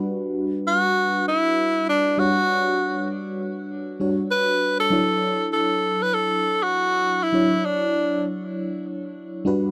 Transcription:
X:1
M:4/4
L:1/16
Q:"Swing 16ths" 1/4=99
K:D
V:1 name="Tenor saxophone"
z4 F4 E4 D2 F2- | F4 z8 B3 A- | A4 A3 B A3 F4 E- | E2 D4 z8 z2 |]
V:2 name="FM electric piano"
[G,DFB]12- [G,DFB]2 [G,DFc]2- | [G,DFc]8- [G,DFc]2 [G,DFc]6 | [F,DEc]16 | [F,DEc]12- [F,DEc]2 [G,DFB]2 |]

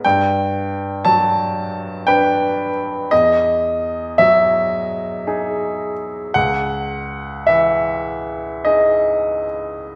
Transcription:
X:1
M:3/4
L:1/8
Q:1/4=56
K:C#dor
V:1 name="Grand piano"
=g2 =a2 g2 | d2 e4 | f2 e2 d2 |]
V:2 name="Grand piano"
=G,,2 F,2 [=DB]2 | E,,2 F,2 [DG]2 | C,,2 E,2 [DG]2 |]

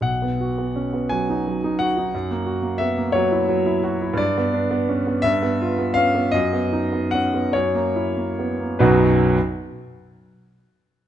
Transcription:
X:1
M:6/8
L:1/16
Q:3/8=56
K:B
V:1 name="Grand piano"
f6 g4 f2- | f4 e2 c6 | =d6 e4 =f2 | d4 f2 c6 |
[B,,,F,,F,B,DFB]2 z8 z2 |]
V:2 name="Grand piano"
B,,, B, F B, C B, F, D F, D F D | F,, A, F A, B, A, F, E F, E F E | =G,, B, =D B, C B, G,, B, =F B, C B, | F,, B, D B, C B, F,, A, E A, B, A, |
z12 |]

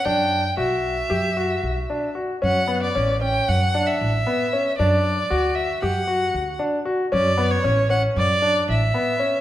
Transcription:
X:1
M:9/8
L:1/16
Q:3/8=77
K:D
V:1 name="Violin"
g4 e12 z2 | f3 d3 g2 f3 e6- e | d6 e2 f6 z4 | d3 c3 f2 d4 e6 |]
V:2 name="Grand piano"
D4 F4 G2 F4 D2 F2 | C2 B,2 C2 C4 D4 B,2 C2 | D4 F4 G2 F4 D2 F2 | C2 B,2 C2 C4 D4 B,2 C2 |]
V:3 name="Upright bass" clef=bass
F,,4 B,,,4 F,,4 B,,,2 z4 | F,,4 A,,,4 F,,4 A,,,2 z4 | F,,4 D,,4 F,,4 D,,2 z4 | F,,4 A,,,4 F,,4 A,,,2 z4 |]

